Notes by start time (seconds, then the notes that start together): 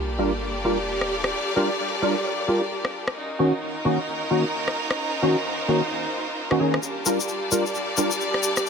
Already playing: G3 A#3 D4 F4 G4 A4 A#4 D5, sub drop
0.19 G3 D4 F4 A#4
0.64 G3 D4 F4 A#4
1.01 cross-stick
1.24 cross-stick
1.56 G3 D4 F4 A#4
2.02 G3 D4 F4 A#4
2.48 G3 D4 F4 A#4
2.85 cross-stick
3.08 cross-stick
3.16 C#4 D#4 F4 F#4
3.39 D#3 A#3 C#4 F#4
3.62 A#4
3.85 D#3 A#3 C#4 F#4
4.31 D#3 A#3 C#4 F#4
4.68 cross-stick
4.91 cross-stick
5.00 C5
5.22 D#3 A#3 C#4 F#4
5.68 D#3 A#3 C#4 F#4
6.51 D#3 A#3 C#4 F#4, cross-stick
6.60 D#3 A#3 C#4 G#4
6.74 cross-stick
6.83 G3 D4 G4 A#4 A5, shaker
6.98 D5
7.06 G3 D4 F4 A#4, shaker
7.20 shaker
7.28 shaker
7.52 G3 D4 F4 A#4, shaker
7.66 shaker
7.75 shaker
7.97 G3 D4 F4 A#4, shaker
8.11 shaker
8.21 shaker
8.34 cross-stick
8.43 shaker
8.56 cross-stick, shaker